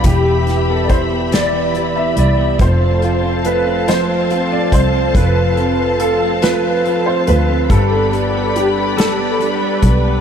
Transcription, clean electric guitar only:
X:1
M:6/8
L:1/16
Q:3/8=47
K:Flyd
V:1 name="Clean electric guitar"
E, B, E B, E B, E, B, E B, E B, | F, C F C F C F, C F C F C | F, C F C F C F, C F C F C | G, B, D B, D B, G, B, D B, D B, |]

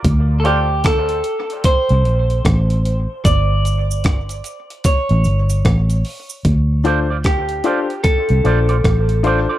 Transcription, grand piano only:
X:1
M:4/4
L:1/16
Q:"Swing 16ths" 1/4=75
K:Dm
V:1 name="Grand piano"
z2 [FAcd] z12 z | z16 | z2 [DFAc] z3 [DFAc] z3 [DFAc] [Ac] z2 [DFAc] z |]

